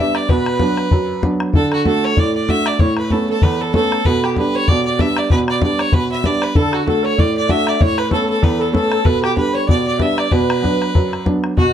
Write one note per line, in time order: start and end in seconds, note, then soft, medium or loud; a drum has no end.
0.00 0.23 G3 soft
0.00 0.23 B3 soft
0.00 0.23 D4 soft
0.00 1.56 G4 medium
0.00 1.08 A4 medium
0.00 0.28 B4 medium
0.00 1.68 D5 medium
0.00 0.17 E5 loud
0.00 0.17 E5 medium
0.00 1.70 E5 medium
0.15 0.31 D5 medium
0.15 0.30 D5 medium
0.15 bodhran medium
0.28 0.60 B2 medium
0.28 2.33 B4 medium
0.28 1.23 B4 medium
0.28 1.24 B4 medium
0.28 bodhran medium
0.37 bodhran soft
0.46 bodhran medium
0.59 0.85 F#3 soft
0.59 0.85 B3 soft
0.59 0.86 D4 soft
0.59 bodhran medium
0.77 bodhran medium
0.91 1.22 F#2 medium
0.91 bodhran medium
1.23 1.48 F#3 soft
1.23 1.49 B3 soft
1.23 1.49 D4 soft
1.23 bodhran medium
1.40 bodhran medium
1.53 1.85 D3 medium
1.53 1.85 A4 medium
1.53 1.71 A4 medium
1.53 bodhran medium
1.63 bodhran soft
1.72 4.16 F#4 medium
1.72 1.85 F#4 medium
1.72 bodhran medium
1.85 2.11 A3 soft
1.85 2.11 D4 soft
1.85 2.11 F#4 soft
1.85 3.12 A4 medium
1.85 2.06 A4 medium
1.85 bodhran medium
2.03 2.22 C#5 medium
2.03 2.20 C#5 loud
2.16 2.48 A2 medium
2.16 2.34 D5 medium
2.16 2.35 D5 loud
2.16 bodhran medium
2.35 2.66 D5 medium
2.35 2.51 D5 medium
2.49 2.74 A3 soft
2.49 2.74 D4 soft
2.49 2.74 F#4 soft
2.49 4.21 E5 medium
2.49 2.68 E5 loud
2.49 bodhran medium
2.66 2.81 D5 medium
2.66 2.86 D5 medium
2.66 bodhran medium
2.79 3.10 A2 medium
2.79 2.97 C#5 medium
2.79 4.54 C#5 loud
2.79 bodhran medium
2.88 bodhran soft
2.97 3.13 B4 medium
2.97 3.43 B4 medium
2.97 bodhran medium
3.10 3.37 A3 soft
3.10 3.37 B3 soft
3.10 3.37 C#4 soft
3.10 3.29 A4 medium
3.10 bodhran medium
3.29 3.61 A4 medium
3.29 3.44 A4 medium
3.42 3.73 E2 medium
3.42 3.62 B4 medium
3.42 4.06 B4 medium
3.42 bodhran medium
3.61 3.74 A4 medium
3.74 3.99 A3 soft
3.74 4.00 B3 soft
3.74 4.00 C#4 medium
3.74 4.07 A4 loud
3.74 5.94 A4 medium
3.74 bodhran medium
3.92 bodhran medium
4.05 4.36 B2 medium
4.05 4.26 B4 loud
4.05 4.37 B4 medium
4.05 bodhran medium
4.14 bodhran soft
4.23 6.58 G4 medium
4.23 4.37 G4 medium
4.23 bodhran medium
4.36 4.62 G3 soft
4.36 4.62 B3 soft
4.36 4.63 D4 soft
4.36 5.30 B4 medium
4.36 4.57 B4 medium
4.36 bodhran medium
4.55 4.75 C#5 medium
4.55 4.70 C#5 loud
4.68 4.99 B2 medium
4.68 4.85 D5 loud
4.68 4.86 D5 medium
4.68 bodhran medium
4.85 5.01 D5 medium
4.85 5.17 D5 medium
4.99 5.25 G3 soft
4.99 5.25 B3 soft
4.99 5.25 D4 medium
4.99 5.19 E5 loud
4.99 6.09 E5 medium
4.99 bodhran medium
5.17 5.47 D5 medium
5.17 5.30 D5 medium
5.17 bodhran medium
5.30 5.61 B2 medium
5.30 5.92 B4 medium
5.30 5.39 B4 loud
5.30 bodhran medium
5.39 bodhran soft
5.47 5.61 D5 medium
5.47 5.62 D5 medium
5.47 bodhran medium
5.61 5.87 G3 soft
5.61 5.87 B3 soft
5.61 5.87 D4 soft
5.61 5.84 D5 medium
5.61 5.82 D5 medium
5.61 bodhran medium
5.78 6.29 C#5 medium
5.78 5.95 C#5 loud
5.78 bodhran medium
5.92 6.23 B2 medium
5.92 6.41 B4 medium
5.92 6.11 B4 loud
5.92 bodhran medium
6.09 7.47 E5 medium
6.09 6.27 E5 medium
6.23 6.49 G3 soft
6.23 6.49 B3 soft
6.23 6.50 D4 soft
6.23 7.10 D5 medium
6.23 6.44 D5 medium
6.23 bodhran medium
6.42 7.97 B4 medium
6.42 6.57 B4 medium
6.42 bodhran medium
6.55 6.86 D3 medium
6.55 6.73 A4 medium
6.55 6.76 A4 loud
6.55 6.85 A4 medium
6.55 bodhran medium
6.65 bodhran soft
6.72 6.86 F#4 medium
6.72 9.16 F#4 medium
6.72 6.87 F#4 medium
6.72 bodhran medium
6.86 7.12 A3 soft
6.86 7.12 D4 soft
6.86 7.12 F#4 soft
6.86 8.11 A4 medium
6.86 7.05 A4 medium
6.86 7.06 A4 medium
6.86 bodhran medium
7.03 7.19 C#5 medium
7.03 7.24 C#5 medium
7.03 7.21 C#5 loud
7.18 7.48 A2 medium
7.18 7.35 D5 medium
7.18 7.36 D5 loud
7.18 bodhran medium
7.35 7.67 D5 medium
7.35 7.49 D5 medium
7.35 7.52 D5 medium
7.48 7.74 A3 soft
7.48 7.74 D4 soft
7.48 7.75 F#4 medium
7.48 9.20 E5 medium
7.48 7.84 E5 medium
7.48 7.69 E5 loud
7.48 bodhran medium
7.67 7.87 D5 medium
7.67 7.82 D5 medium
7.67 bodhran medium
7.81 8.11 A2 medium
7.81 8.00 C#5 loud
7.81 9.53 C#5 medium
7.81 8.00 C#5 medium
7.81 bodhran medium
7.90 bodhran soft
7.97 8.42 B4 medium
7.97 8.10 B4 medium
7.97 8.12 B4 medium
7.97 bodhran medium
8.11 8.36 A3 soft
8.11 8.37 B3 soft
8.11 8.37 C#4 soft
8.11 8.27 A4 medium
8.11 8.29 A4 medium
8.11 8.28 A4 medium
8.11 bodhran medium
8.28 8.44 A4 medium
8.28 8.45 A4 medium
8.28 8.58 A4 medium
8.42 8.73 E2 medium
8.42 9.04 B4 medium
8.42 8.61 B4 medium
8.42 8.62 B4 medium
8.42 bodhran medium
8.58 8.72 A4 medium
8.58 8.73 A4 medium
8.58 8.74 A4 medium
8.72 8.99 A3 soft
8.72 8.99 B3 soft
8.72 8.99 C#4 soft
8.72 10.92 A4 medium
8.72 8.90 A4 medium
8.72 9.06 A4 medium
8.72 bodhran medium
8.92 9.07 A4 medium
8.92 bodhran medium
9.05 9.36 B2 medium
9.05 9.36 B4 medium
9.05 9.22 B4 medium
9.05 9.21 B4 medium
9.05 bodhran medium
9.15 bodhran soft
9.22 9.35 G4 medium
9.22 11.58 G4 medium
9.22 9.36 G4 medium
9.22 bodhran medium
9.36 9.62 G3 soft
9.36 9.62 B3 soft
9.36 9.62 D4 soft
9.36 10.31 B4 medium
9.36 9.54 B4 medium
9.36 9.56 B4 medium
9.36 bodhran medium
9.53 9.68 C#5 medium
9.53 9.72 C#5 medium
9.53 9.68 C#5 medium
9.66 9.99 B2 medium
9.66 9.85 D5 medium
9.66 9.83 D5 medium
9.66 9.85 D5 loud
9.66 bodhran medium
9.84 10.00 D5 medium
9.84 10.16 D5 medium
9.84 10.03 D5 medium
9.98 10.25 G3 soft
9.98 10.25 B3 soft
9.98 10.25 D4 soft
9.98 11.70 E5 medium
9.98 10.17 E5 medium
9.98 10.20 E5 medium
9.98 bodhran medium
10.16 10.30 D5 medium
10.16 11.73 D5 medium
10.16 10.33 D5 medium
10.16 bodhran medium
10.31 10.62 B2 medium
10.31 11.21 B4 medium
10.31 11.26 B4 medium
10.31 11.73 B4 medium
10.31 bodhran medium
10.41 bodhran soft
10.50 bodhran medium
10.62 10.87 F#3 soft
10.62 10.88 B3 soft
10.62 10.88 D4 soft
10.62 bodhran medium
10.82 bodhran medium
10.95 11.25 F#2 medium
10.95 bodhran medium
11.13 bodhran medium
11.25 11.51 F#3 soft
11.25 11.51 B3 soft
11.25 11.51 D4 medium
11.25 bodhran medium
11.44 bodhran medium
11.56 11.73 B2 medium
11.56 11.73 F#4 medium
11.56 bodhran medium
11.66 bodhran soft